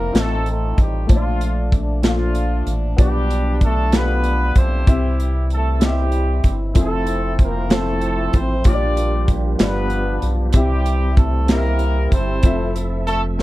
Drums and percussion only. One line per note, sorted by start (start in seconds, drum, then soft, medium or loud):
0.15 snare medium
0.15 closed hi-hat medium
0.46 closed hi-hat soft
0.78 kick medium
0.78 closed hi-hat medium
1.09 kick loud
1.09 closed hi-hat medium
1.41 closed hi-hat medium
1.72 kick medium
1.72 closed hi-hat soft
2.03 snare medium
2.03 closed hi-hat medium
2.35 closed hi-hat soft
2.67 closed hi-hat medium
2.98 kick loud
2.98 closed hi-hat medium
3.30 closed hi-hat medium
3.61 kick medium
3.61 closed hi-hat soft
3.92 snare loud
3.92 closed hi-hat medium
4.24 closed hi-hat soft
4.55 kick medium
4.55 closed hi-hat medium
4.87 kick loud
4.87 closed hi-hat medium
5.20 closed hi-hat medium
5.50 closed hi-hat soft
5.81 snare loud
5.81 closed hi-hat medium
6.12 closed hi-hat soft
6.44 kick medium
6.44 closed hi-hat medium
6.75 kick loud
6.75 closed hi-hat medium
7.07 closed hi-hat medium
7.39 kick medium
7.39 closed hi-hat soft
7.70 snare loud
7.70 closed hi-hat medium
8.01 closed hi-hat soft
8.33 kick medium
8.33 closed hi-hat medium
8.64 kick loud
8.64 closed hi-hat medium
8.97 closed hi-hat medium
9.28 kick medium
9.28 closed hi-hat soft
9.59 snare loud
9.59 closed hi-hat medium
9.90 closed hi-hat soft
10.22 closed hi-hat medium
10.53 kick loud
10.53 closed hi-hat medium
10.86 closed hi-hat medium
11.17 kick medium
11.17 closed hi-hat soft
11.48 snare loud
11.48 closed hi-hat medium
11.79 closed hi-hat soft
12.12 kick medium
12.12 closed hi-hat medium
12.43 kick loud
12.43 closed hi-hat medium
12.76 closed hi-hat medium
13.07 closed hi-hat soft
13.39 snare medium